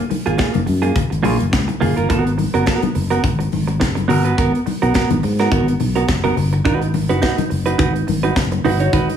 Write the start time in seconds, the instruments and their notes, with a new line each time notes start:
0.10 muted clean electric guitar stroke, open hi-hat, high conga
0.26 fingered electric bass G#1, clean electric guitar A#3 F4 G#4, closed hi-hat
0.38 clean electric guitar A#3 F4 G#4, kick, snare, closed hi-hat, muted conga
0.54 fingered electric bass F#1, muted clean electric guitar stroke, closed hi-hat, muted conga, high conga
0.66 fingered electric bass F#2, muted clean electric guitar stroke, open hi-hat
0.82 clean electric guitar A#3 F4 G#4, closed hi-hat
0.96 kick, closed hi-hat, muted conga, low conga
1.10 fingered electric bass G#1, muted clean electric guitar stroke, closed hi-hat, muted conga
1.23 fingered electric bass A#1, clean electric guitar A#3 F4 G#4, open hi-hat, high conga
1.39 fingered electric bass F#1, muted clean electric guitar stroke, closed hi-hat
1.52 fingered electric bass C#2, muted clean electric guitar stroke, kick, snare, closed hi-hat, muted conga
1.68 muted clean electric guitar stroke, closed hi-hat, muted conga, high conga
1.80 fingered electric bass F#1, clean electric guitar A#3 F4 G#4, open hi-hat, low conga
1.96 fingered electric bass G1, clean electric guitar A#3 F4 A#4, closed hi-hat
2.09 fingered electric bass G#1, clean electric guitar B3 F#4 A#4, kick, closed hi-hat, muted conga
2.25 muted clean electric guitar stroke, closed hi-hat
2.37 muted clean electric guitar stroke, open hi-hat, high conga
2.54 fingered electric bass F#1, clean electric guitar B3 F#4 A#4, closed hi-hat
2.66 clean electric guitar B3 F#4 A#4, kick, snare, closed hi-hat
2.82 muted clean electric guitar stroke, closed hi-hat, muted conga, high conga
2.95 fingered electric bass F#1, muted clean electric guitar stroke, open hi-hat
3.10 clean electric guitar B3 F#4 A#4, closed hi-hat
3.24 fingered electric bass G#1, kick, closed hi-hat, muted conga, low conga
3.39 muted clean electric guitar stroke, closed hi-hat, muted conga
3.52 fingered electric bass G#1, open hi-hat, high conga
3.67 muted clean electric guitar stroke, closed hi-hat
3.80 fingered electric bass F#1, muted clean electric guitar stroke, kick, snare, closed hi-hat, muted conga
3.95 muted clean electric guitar stroke, closed hi-hat, muted conga, high conga
4.08 fingered electric bass G1, clean electric guitar B3 F#4 A#4, open hi-hat, low conga
4.25 clean electric guitar B3 F#4 B4, closed hi-hat
4.37 fingered electric bass G#1, clean electric guitar B3 F#4 A#4, kick, closed hi-hat
4.54 muted clean electric guitar stroke, closed hi-hat
4.66 muted clean electric guitar stroke, open hi-hat, high conga
4.82 fingered electric bass B1, clean electric guitar B3 F#4 A#4, closed hi-hat
4.94 clean electric guitar B3 F#4 A#4, kick, snare, closed hi-hat
5.10 fingered electric bass G#1, muted clean electric guitar stroke, closed hi-hat, muted conga, high conga
5.23 fingered electric bass G#2, muted clean electric guitar stroke, open hi-hat
5.39 clean electric guitar B3 F#4 A#4, snare, closed hi-hat
5.51 fingered electric bass G#1, clean electric guitar B3 F#4 A#4, kick, closed hi-hat, muted conga, low conga
5.68 muted clean electric guitar stroke, closed hi-hat, muted conga
5.80 fingered electric bass B1, muted clean electric guitar stroke, open hi-hat, high conga
5.95 clean electric guitar B3 F#4 A#4, closed hi-hat
6.08 fingered electric bass F#1, muted clean electric guitar stroke, kick, snare, closed hi-hat, muted conga
6.24 clean electric guitar B3 F#4 A#4, closed hi-hat, high conga
6.36 fingered electric bass G1, muted clean electric guitar stroke, open hi-hat, low conga
6.53 muted clean electric guitar stroke, closed hi-hat
6.65 fingered electric bass G#1, clean electric guitar D#4 F#4 B4, kick, closed hi-hat
6.81 muted clean electric guitar stroke, closed hi-hat, muted conga
6.94 muted clean electric guitar stroke, open hi-hat, high conga
7.09 fingered electric bass F#1, clean electric guitar D#4 F#4 B4, closed hi-hat
7.22 clean electric guitar D#4 F#4 B4, kick, snare, closed hi-hat, muted conga
7.38 muted clean electric guitar stroke, closed hi-hat, muted conga, high conga
7.50 fingered electric bass F#1, muted clean electric guitar stroke, open hi-hat
7.66 clean electric guitar D#4 F#4 B4, closed hi-hat
7.78 fingered electric bass G#1, clean electric guitar D#4 F#4 B4, kick, closed hi-hat, muted conga, low conga
7.94 muted clean electric guitar stroke, closed hi-hat
8.07 fingered electric bass G#1, muted clean electric guitar stroke, open hi-hat, high conga
8.23 clean electric guitar D#4 F#4 B4, closed hi-hat
8.36 fingered electric bass F#1, muted clean electric guitar stroke, kick, snare, closed hi-hat
8.52 muted clean electric guitar stroke, closed hi-hat, muted conga, high conga
8.64 fingered electric bass G1, clean electric guitar D#4 F#4 B4, open hi-hat, low conga
8.80 clean electric guitar D#4 F#4 C#5, closed hi-hat
8.93 fingered electric bass G#1, clean electric guitar D#4 F#4 B4, kick, closed hi-hat, muted conga
9.09 muted clean electric guitar stroke, closed hi-hat, muted conga